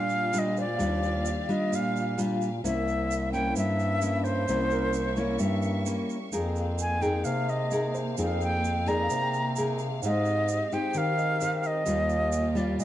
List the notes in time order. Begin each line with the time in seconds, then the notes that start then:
Already playing: A#2 G3 A#3 D4 F4 G4 A#4 F5
0.09 shaker
0.33 G3 D4 F4, shaker
0.39 D#5
0.57 C5 D5, shaker
0.75 D#3 G3 F5
0.79 D#2 D4 F4, shaker
1.03 shaker
1.25 shaker
1.49 G3 D4 F4 D#5, shaker
1.72 A#2 F5, shaker
1.96 shaker
2.18 G3 D4 F4, shaker
2.42 shaker
2.64 C2 C3 A#3 C#4 E4 A#4 C5 E5, shaker
2.88 shaker
3.11 shaker
3.32 A#3 C#4 E4 G5, shaker
3.56 G2 G3 E5, shaker
3.79 shaker
4.02 A#3 C#4 E4, shaker
4.24 C5, shaker
4.48 C2 C3 A#3 C#4 E4 C#6, shaker
4.71 A#4, shaker
4.93 shaker
5.16 A#3 C#4 E4 C#5, shaker
5.39 G2 G3 E5, shaker
5.62 shaker
5.86 A#3 C#4 E4, shaker
6.10 shaker
6.32 F2 F3 G#3 A#3 D#4 G#4 A#4, shaker
6.36 F5
6.56 shaker
6.78 G#5, shaker
7.01 D#4 G#4 A#4 G5, shaker
7.24 C3 F5, shaker
7.49 D#5, shaker
7.71 D#4 G#4 A#4, shaker
7.95 C5, shaker
8.17 F2 F3 D#4 G#4 A#4, shaker
8.22 F5
8.41 G5, shaker
8.64 shaker
8.86 D#4 G#4 A#4 D5 A#5, shaker
9.04 F5
9.10 C3, shaker
9.21 G5
9.34 shaker
9.56 D#4 G#4 A#4, shaker
9.79 shaker
10.02 G#2 G#3 C4 D#4 G4 C5 D#5 F5, shaker
10.25 shaker
10.48 shaker
10.72 D#4 G4 C5 G5, shaker
10.94 D#3 F5, shaker
11.18 D#5, shaker
11.41 D#4 G4 C5, shaker
11.63 D#5, shaker
11.86 D#2 D#3 G3 A#3 F4 G4, shaker
12.09 shaker
12.32 shaker
12.55 G3 F4 D5, shaker
12.79 A#2 D#5, shaker